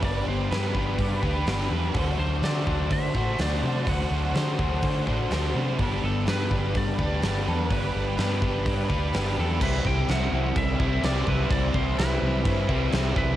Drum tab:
CC |----------------|----------------|----------------|----------------|
HH |o---o---o---o---|o---o---o---o---|o---o---o---o---|o---o---o---o---|
SD |----o-------oo--|----o-------o---|----o-------o---|----oo------o---|
BD |o-----o-o-o-----|o-----o-o-o-----|o-----o-o-o-----|o-----o-o-o-----|

CC |----------------|x---x---x---x---|x---x---x---x---|
HH |o---o---o---o---|----------------|----------------|
SD |----o-------oo--|----o-------o---|----o-------o---|
BD |o-----o-o-o-----|o-o-----o-o---o-|o-o-----o-o---o-|